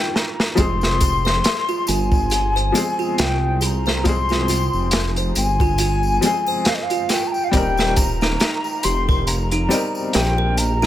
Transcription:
Already playing: felt piano D#3 G3 F4 D5, flute G5
0.15 flute A#5, snare
0.40 snare
0.55 detuned saw bass F1, felt piano F3 G#3 C4, music box F4, flute C6, kick, closed hi-hat, tambourine
0.60 felt piano G#4
0.81 snare, tambourine
1.00 music box G#4, kick, closed hi-hat, tambourine
1.25 music box C5, snare, tambourine
1.44 snare, closed hi-hat, tambourine
1.69 music box F4, tambourine
1.87 detuned saw bass G1, music box F4, flute G#5, closed hi-hat, tambourine
2.11 kick, tambourine
2.30 music box G#4, closed hi-hat, tambourine
2.56 music box C5, closed hi-hat
2.72 felt piano F3 G#3 C4, closed hi-hat, tambourine, triangle
2.78 felt piano G#4
2.99 music box F4, tambourine
3.18 detuned saw bass C2, music box F4, flute G5, snare, closed hi-hat, tambourine
3.61 music box G#4, flute C6, closed hi-hat, tambourine
3.65 flute A#5
3.86 music box C5, snare, tambourine
4.04 felt piano F3 G#3 C4, flute C6, kick, closed hi-hat, tambourine
4.09 felt piano G#4
4.29 music box F4, snare, tambourine
4.48 music box F4, closed hi-hat, tambourine
4.73 detuned saw bass F1, tambourine
4.91 music box G#4, snare, closed hi-hat, tambourine
5.16 music box C5, closed hi-hat, tambourine
5.35 detuned saw bass G1, flute G#5, closed hi-hat, tambourine
5.60 music box F4, kick, tambourine
5.78 music box F4, closed hi-hat, tambourine, triangle
6.03 tambourine
6.21 felt piano F3 G#3 C4, music box G#4, closed hi-hat, tambourine
6.26 felt piano G#4
6.46 music box C5, tambourine, triangle
6.65 flute F5, snare, closed hi-hat, tambourine
6.74 flute D#5
6.82 flute F5
6.90 music box F4, closed hi-hat, tambourine
7.09 music box F4, flute G5, snare, closed hi-hat, tambourine
7.27 flute A#5
7.31 flute G5, tambourine
7.44 flute F5
7.48 felt piano G3, flute G5
7.53 detuned saw bass D#1, felt piano C4 D#4, music box G4, kick, closed hi-hat, tambourine
7.57 felt piano A#4
7.77 music box A#4, snare, tambourine
7.96 flute A#5, kick, closed hi-hat, tambourine
8.21 music box D#4, snare, tambourine
8.40 music box D#4, snare, closed hi-hat, tambourine
8.64 tambourine
8.83 detuned saw bass F1, music box G4, flute C6, closed hi-hat, tambourine
9.09 music box A#4, kick, tambourine
9.27 flute A#5, closed hi-hat, tambourine
9.51 music box D#4, closed hi-hat
9.69 felt piano G3 C4 D#4, music box D#4, closed hi-hat, tambourine, triangle
9.74 felt piano A#4
9.95 tambourine
10.13 detuned saw bass A#1, music box G4, flute G5, snare, closed hi-hat, tambourine
10.38 music box A#4
10.57 flute A#5, closed hi-hat, tambourine
10.82 music box D#4, snare, tambourine

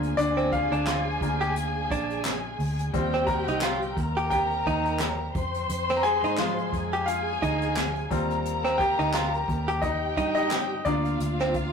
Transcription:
Already playing: fingered electric bass D2, grand piano A#3 C4 D4 F4 C5, violin section G#4 G#5
0.03 closed hi-hat
0.17 fingered electric bass D2, grand piano D4 D5, closed hi-hat
0.37 clean electric guitar C4, closed hi-hat
0.52 grand piano F4 F5, kick, closed hi-hat
0.71 fingered electric bass D2, clean electric guitar D4, closed hi-hat
0.87 clean electric guitar F4, snare, clap, closed hi-hat
1.21 fingered electric bass D2, grand piano A#3 D4 F4, kick, closed hi-hat
1.41 clean electric guitar G4, closed hi-hat
1.56 closed hi-hat
1.90 fingered electric bass A#1, clean electric guitar D4, kick, closed hi-hat
2.10 closed hi-hat
2.25 snare, clap, closed hi-hat
2.59 fingered electric bass D2, open hi-hat
2.79 closed hi-hat
2.93 fingered electric bass D#2, grand piano G3 C4 F4, violin section G4 G5, kick, closed hi-hat
3.13 clean electric guitar C4, snare
3.27 grand piano A#4 A#5, kick, closed hi-hat
3.47 fingered electric bass C2, clean electric guitar D#4, closed hi-hat
3.61 clean electric guitar F4, snare, clap, closed hi-hat
3.82 closed hi-hat
3.97 fingered electric bass D#2, violin section A#4 A#5, kick, closed hi-hat
4.16 clean electric guitar G4, closed hi-hat
4.30 grand piano G4 G5, kick, closed hi-hat
4.50 closed hi-hat
4.66 fingered electric bass D#2, clean electric guitar D#4, kick, closed hi-hat
4.85 closed hi-hat
5.00 snare, clap, closed hi-hat
5.35 fingered electric bass F2, violin section C5 C6, kick, closed hi-hat
5.54 closed hi-hat
5.69 fingered electric bass F2, closed hi-hat
5.89 clean electric guitar C4, snare, closed hi-hat
5.97 grand piano A#5
6.03 grand piano G#4 G#5, closed hi-hat
6.23 fingered electric bass G#2, clean electric guitar D#4, closed hi-hat
6.37 grand piano F3 G#3 F4, clean electric guitar F4, snare, clap, closed hi-hat
6.58 closed hi-hat
6.73 fingered electric bass F2, violin section G#4 G#5, kick, closed hi-hat
6.92 clean electric guitar G4, closed hi-hat
7.06 grand piano F4 F5, closed hi-hat
7.42 fingered electric bass D2, clean electric guitar D#4, kick, closed hi-hat
7.61 closed hi-hat
7.76 snare, clap, closed hi-hat
7.96 closed hi-hat
8.10 fingered electric bass D#2, grand piano G3 C4 F4, violin section A#4 A#5, kick, closed hi-hat
8.30 closed hi-hat
8.45 closed hi-hat
8.65 clean electric guitar C4, snare, closed hi-hat
8.78 grand piano G4 G5, kick, closed hi-hat
8.99 fingered electric bass D2, clean electric guitar D#4, closed hi-hat
9.14 clean electric guitar F4, snare, clap, closed hi-hat
9.34 closed hi-hat
9.48 fingered electric bass D#2, kick, closed hi-hat
9.68 clean electric guitar G4, closed hi-hat
9.82 grand piano D#4 D#5, violin section G4 G5, kick, closed hi-hat
10.17 fingered electric bass G2, clean electric guitar D#4, kick, closed hi-hat
10.35 grand piano D#4 D#5, closed hi-hat
10.51 snare, clap, closed hi-hat
10.85 fingered electric bass D2, grand piano A#3 D4 F4 D5, violin section F4 F5, kick, closed hi-hat
11.05 closed hi-hat
11.20 fingered electric bass D2, closed hi-hat
11.39 clean electric guitar C4, snare, closed hi-hat
11.54 kick, closed hi-hat

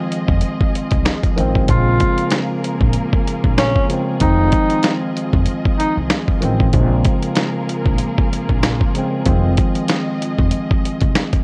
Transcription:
Already playing: tine electric piano D#3 F3 G#3 C4, string section F3 F4 G#4 D#5
0.12 closed hi-hat
0.28 upright bass F1, kick
0.41 closed hi-hat
0.60 kick
0.75 closed hi-hat
0.90 upright bass C2, kick, closed hi-hat
1.05 finger snap, snare, closed hi-hat
1.23 kick, closed hi-hat
1.35 upright bass A1, tine electric piano D#3 F3 G#3, closed hi-hat
1.40 tine electric piano C4
1.55 kick
1.67 upright bass A#1, tine electric piano C#3 F3 G#3, string section A#3 F4 G#4 A#4, tenor saxophone F4, kick, closed hi-hat
1.71 tine electric piano A#3
1.78 tine electric piano C4
2.00 kick, closed hi-hat
2.18 closed hi-hat
2.31 finger snap, snare, closed hi-hat
2.64 closed hi-hat
2.81 upright bass A#1, kick
2.93 closed hi-hat
3.13 kick
3.28 closed hi-hat
3.44 upright bass A#1, kick
3.58 tenor saxophone C#4, finger snap, snare, closed hi-hat
3.76 kick
3.88 tine electric piano C#3 F3 G#3, closed hi-hat
3.93 tine electric piano C4
4.19 upright bass F1, tine electric piano D#3 F3 G#3, string section F3 D#5, tenor saxophone D#4, kick, closed hi-hat
4.23 tine electric piano C4
4.52 kick, closed hi-hat
4.70 closed hi-hat
4.83 finger snap, snare, closed hi-hat
5.17 closed hi-hat
5.33 upright bass F1, kick
5.46 closed hi-hat
5.66 kick
5.79 tenor saxophone D#4, closed hi-hat
5.97 upright bass C2
6.10 finger snap, snare, closed hi-hat
6.28 kick
6.41 upright bass A1, tine electric piano D#3 F3 G#3, closed hi-hat
6.45 tine electric piano C4
6.60 kick
6.72 upright bass A#1, tine electric piano C#3 F3 G#3, string section A#3 F4 G#4 A#4, kick, closed hi-hat
6.76 tine electric piano A#3
6.83 tine electric piano C4
7.05 kick, closed hi-hat
7.23 closed hi-hat
7.36 finger snap, snare, closed hi-hat
7.69 closed hi-hat
7.86 upright bass A#1, kick
7.99 closed hi-hat
8.18 kick
8.33 closed hi-hat
8.49 upright bass A#1, kick
8.63 finger snap, snare, closed hi-hat
8.81 kick
8.93 tine electric piano C#3 F3 G#3, closed hi-hat
8.98 tine electric piano C4
9.24 upright bass F1, tine electric piano D#3 F3 G#3, string section F3 D#5, kick, closed hi-hat
9.29 tine electric piano C4
9.57 kick, closed hi-hat
9.75 closed hi-hat
9.88 finger snap, snare, closed hi-hat
10.22 closed hi-hat
10.38 upright bass F1, kick
10.51 closed hi-hat
10.71 kick
10.85 closed hi-hat
11.01 upright bass C2, kick, closed hi-hat
11.15 finger snap, snare, closed hi-hat
11.33 kick, closed hi-hat

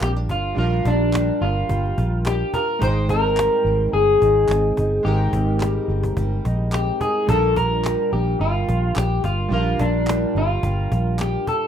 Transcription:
Already playing: nylon-string guitar A#2 G3 F4, synth keys G3 D4 F4 A#4
0.01 fingered electric bass A#1, nylon-string guitar C4, clean electric guitar G4, cajon slap, clap
0.16 nylon-string guitar D4
0.29 fingered electric bass G1, nylon-string guitar F4, clean electric guitar F4, cajon bass
0.55 fingered electric bass A#1, nylon-string guitar A#2, synth keys G3 D4 F4, clean electric guitar F4, cajon slap
0.60 synth keys A#4
0.85 fingered electric bass A#1, nylon-string guitar D4, clean electric guitar D4, cajon bass
1.13 nylon-string guitar G3, cajon slap, clap
1.41 fingered electric bass G1, nylon-string guitar D4, clean electric guitar F4, cajon slap
1.69 fingered electric bass G1, nylon-string guitar G3, cajon bass, cajon slap
1.85 cajon slap
1.98 fingered electric bass A#1, nylon-string guitar F4, cajon bass
2.25 nylon-string guitar D4, clean electric guitar G4, cajon slap, clap
2.54 nylon-string guitar F4, clean electric guitar A#4, cajon bass
2.79 fingered electric bass G#1, synth keys G#3 D#4 G5, clean electric guitar C5, cajon bass
2.83 nylon-string guitar G#2, synth keys C5
3.09 nylon-string guitar C4, clean electric guitar A#4, cajon bass
3.37 nylon-string guitar G3, cajon slap, clap
3.65 fingered electric bass G#1, nylon-string guitar C4, cajon slap
3.93 fingered electric bass G1, clean electric guitar G#4, cajon slap
4.09 cajon slap
4.22 fingered electric bass G#1, nylon-string guitar D#4, cajon bass
4.48 fingered electric bass G#1, nylon-string guitar C4, cajon slap, clap
4.77 fingered electric bass G1, nylon-string guitar D#4, cajon bass
5.03 fingered electric bass G#1, nylon-string guitar G#2, synth keys G#3 D#4 G4, clean electric guitar G4, cajon slap
5.08 synth keys A#4
5.33 fingered electric bass G#1, nylon-string guitar C4, cajon bass
5.60 nylon-string guitar G3, cajon slap, clap
5.88 fingered electric bass G1, nylon-string guitar C4, cajon slap
6.03 cajon bass
6.17 fingered electric bass G1, nylon-string guitar G3, cajon bass, cajon slap
6.33 cajon slap
6.45 fingered electric bass A#1, nylon-string guitar D#4, cajon bass
6.72 nylon-string guitar C4, clean electric guitar G4, cajon slap, clap
7.01 nylon-string guitar D#4, clean electric guitar G#4, cajon bass
7.27 fingered electric bass A#1, nylon-string guitar A#2, synth keys G3 D4 F4, clean electric guitar A4, cajon bass
7.31 synth keys A#4
7.56 nylon-string guitar D4, clean electric guitar A#4, cajon bass
7.84 nylon-string guitar G3, cajon slap, clap
8.13 fingered electric bass A#1, nylon-string guitar D4, clean electric guitar G4, cajon slap
8.40 fingered electric bass G1, nylon-string guitar G3, clean electric guitar F4, cajon slap
8.56 cajon slap
8.68 fingered electric bass A#1, nylon-string guitar F4, cajon bass
8.96 fingered electric bass A#1, nylon-string guitar D4, clean electric guitar G4, cajon slap, clap
9.24 fingered electric bass G1, nylon-string guitar F4, clean electric guitar F4, cajon bass
9.49 fingered electric bass A#1, nylon-string guitar A#2, synth keys G3 D4 F4, cajon slap
9.53 clean electric guitar F4, synth keys A#4
9.79 fingered electric bass A#1, nylon-string guitar D4, clean electric guitar D4, cajon bass
10.07 nylon-string guitar G3, cajon slap, clap
10.35 fingered electric bass G1, nylon-string guitar D4, clean electric guitar F4, cajon slap
10.63 fingered electric bass G1, nylon-string guitar G3, cajon bass, cajon slap
10.92 fingered electric bass A#1, nylon-string guitar F4, cajon bass
11.19 nylon-string guitar D4, clean electric guitar G4, cajon slap, clap
11.47 nylon-string guitar F4, clean electric guitar A4, cajon bass

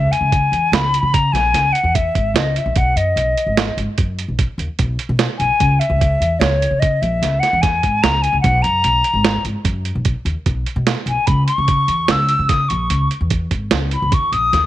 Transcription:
Already playing: flute E5
0.12 flute G#5, closed hi-hat
0.21 upright bass C#2
0.32 kick, closed hi-hat
0.52 upright bass E2, closed hi-hat
0.72 upright bass C#2, flute B5, snare, closed hi-hat
0.94 closed hi-hat
1.03 upright bass C#3
1.14 flute A#5, kick, closed hi-hat
1.32 upright bass A#1, flute G#5, snare, closed hi-hat
1.53 upright bass C#2, snare, closed hi-hat
1.73 flute F#5, closed hi-hat
1.83 upright bass E2
1.95 flute E5, kick, closed hi-hat
2.15 upright bass G#1, kick, closed hi-hat
2.34 upright bass C#2, flute D#5, snare, closed hi-hat
2.56 flute E5, closed hi-hat
2.66 upright bass A#1
2.76 upright bass B1, flute F#5, kick, closed hi-hat
2.96 upright bass F#2, flute D#5, closed hi-hat
3.16 upright bass B1, closed hi-hat
3.38 closed hi-hat
3.47 upright bass G#1
3.57 snare, closed hi-hat
3.77 upright bass G#1, closed hi-hat
3.98 upright bass F#2, kick, closed hi-hat
4.19 closed hi-hat
4.28 upright bass B1
4.39 kick, closed hi-hat
4.58 upright bass D#2, closed hi-hat
4.79 upright bass B1, kick, closed hi-hat
4.99 closed hi-hat
5.09 upright bass B2
5.19 snare, closed hi-hat
5.39 upright bass B1, flute G#5, closed hi-hat
5.60 upright bass C#2, kick, closed hi-hat
5.80 flute E5, closed hi-hat
5.90 upright bass C#2
6.01 kick, closed hi-hat
6.20 upright bass E2, closed hi-hat
6.39 upright bass C#2, flute C#5, snare, closed hi-hat
6.62 closed hi-hat
6.71 upright bass C#3
6.80 flute D#5, kick, closed hi-hat
7.02 upright bass A#1, flute E5, closed hi-hat
7.22 upright bass C#2, snare, closed hi-hat
7.40 flute F#5, snare, closed hi-hat
7.53 upright bass E2
7.62 flute G#5, kick, snare, closed hi-hat
7.83 upright bass G#1, kick, closed hi-hat
8.03 upright bass C#2, flute A#5, snare, closed hi-hat
8.22 flute G#5, closed hi-hat
8.33 upright bass C#2
8.41 upright bass B1, flute F#5, kick, closed hi-hat
8.62 upright bass F#2, flute A#5, closed hi-hat
8.84 upright bass B1, closed hi-hat
9.04 closed hi-hat
9.13 upright bass G#1
9.25 snare, closed hi-hat
9.45 upright bass G#1, closed hi-hat
9.64 upright bass F#2, kick, closed hi-hat
9.85 closed hi-hat
9.95 upright bass B1
10.05 kick, closed hi-hat
10.25 upright bass D#2, closed hi-hat
10.46 upright bass B1, kick, closed hi-hat
10.66 closed hi-hat
10.76 upright bass B2
10.87 snare, closed hi-hat
11.06 upright bass B1, flute G#5, closed hi-hat
11.27 upright bass C#2, flute B5, kick, closed hi-hat
11.47 flute C#6, closed hi-hat
11.58 upright bass C#2
11.68 kick, closed hi-hat
11.88 upright bass E2, closed hi-hat
12.08 upright bass C#2, flute E6, snare, closed hi-hat
12.29 closed hi-hat
12.39 upright bass C#3
12.49 flute D#6, kick, snare, closed hi-hat
12.69 upright bass A#1, flute C#6, closed hi-hat
12.90 upright bass C#2, closed hi-hat
13.11 closed hi-hat
13.21 upright bass E2
13.30 kick, closed hi-hat
13.51 upright bass G#1, kick, closed hi-hat
13.71 upright bass C#2, snare, closed hi-hat
13.91 flute B5, closed hi-hat
14.02 upright bass C#2
14.12 upright bass D#2, flute C#6, kick, closed hi-hat
14.32 upright bass A#1, flute D#6, closed hi-hat
14.53 upright bass D#2, snare, closed hi-hat

